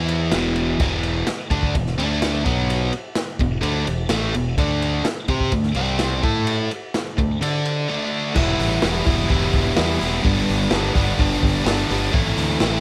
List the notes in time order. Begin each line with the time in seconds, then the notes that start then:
Already playing: E2 E3 B3 E4
0.08 ride
0.32 E1 E2 B2 E3, snare, ride
0.56 ride
0.79 E1 E2 B2 E3, kick, ride
1.03 ride
1.27 muted overdriven electric guitar stroke, muted fingered electric bass stroke, snare, ride
1.50 D2 D3 A3 D4, kick, ride
1.63 kick
1.74 E1 E2 B2, kick, ride
1.87 snare
1.98 D2 D3 A3 D4, ride
2.22 snare, ride
2.45 B1 B2 F#3 B3, kick, ride
2.70 ride
2.93 ride
3.15 snare, ride
3.39 E1 E2 B2, kick, ride
3.61 D2 D3 A3 D4, ride
3.84 E1 E2 B2, ride
4.09 A1 A2 E3 A3, snare, ride
4.34 E1 E2 B2, ride
4.57 D2 D3 A3 D4, kick, ride
4.82 ride
5.04 muted overdriven electric guitar stroke, snare, ride
5.28 C3 C4 G4 C5, kick, ride
5.40 kick
5.52 D2 D3 A3, kick, ride
5.63 snare
5.75 C2 C3 G3 C4, ride
5.99 snare, ride
6.22 A2 A3 E4 A4, kick, ride
6.47 ride
6.71 ride
6.94 snare, ride
7.17 D2 D3 A3, kick, ride
7.41 D3 D4 A4 D5, ride
7.66 ride
7.88 D3 A3 D4
8.35 E1 E3 G3 B3 E4, kick, crash
8.59 A1, open hi-hat
8.82 E1 E3 G3 B3 E4, snare, open hi-hat
9.06 E1 G3 B3 E4, kick, open hi-hat
9.29 E1 E3 G3 B3 E4, kick, open hi-hat
9.53 E1, kick, open hi-hat
9.76 E2 E3 G3 B3 E4, snare, open hi-hat
9.99 E1 G3 B3 E4, open hi-hat
10.24 G1 G2 D3 G3 B3 D4, kick, open hi-hat
10.49 G1, open hi-hat
10.70 G1 D3 G3 B3 D4, snare, open hi-hat
10.94 G1 G3 B3 D4, kick, open hi-hat
11.18 G1 G2 D3 G3 B3 D4, kick, open hi-hat
11.43 G1, kick, open hi-hat
11.64 G1 D3 G3 B3 D4, snare, open hi-hat
11.88 G1 G3 B3 D4, open hi-hat
12.11 A1 A2 E3 A3 C4 E4, kick, open hi-hat
12.37 D2, open hi-hat
12.60 A1 E3 A3 C4 E4, snare, open hi-hat